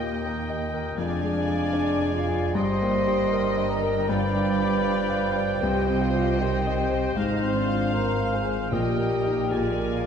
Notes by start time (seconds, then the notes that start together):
Already playing: D#2 A#2 A#3 G4 A#4 D#5 G5
0.03 G4
0.26 A#4
0.50 D#5
0.74 A#4
0.96 F1 F2 G#3 D4 D5 F5 G#5
1.22 G#3
1.48 G#4
1.73 D4
2.01 D5
2.14 F4 F5
2.29 G#4
2.54 G1 G2 G3 C5 D#5 G5 A#5 C6
2.82 A#3
3.07 G4
3.33 A#4
3.58 D#5
3.70 A#4 A#5
3.83 A#4
4.08 G2 F3 B4 D5 F5 G5 B5
4.35 D4
4.59 G4
4.84 D5
5.10 F5
5.36 D5
5.62 C2 C3 G4 C5 D#5 G5
5.90 C4
6.01 F4 F5
6.15 G4
6.39 D#3 G4 C5 G5
6.67 D#5
6.92 C5
7.16 G#1 G#2 F3 D#4 D#5 F5
7.43 C4
7.55 D4 D5
7.68 F4
7.94 A#4 C5 A#5
8.20 F5
8.33 G#4 G#5
8.46 C5
8.71 A#1 A#2 G3 G4 A#4 D#5 G5
8.99 A#3
9.26 D#4 G4
9.51 A#2 G#3 D5 G#5
9.78 A#3
9.92 F4 F5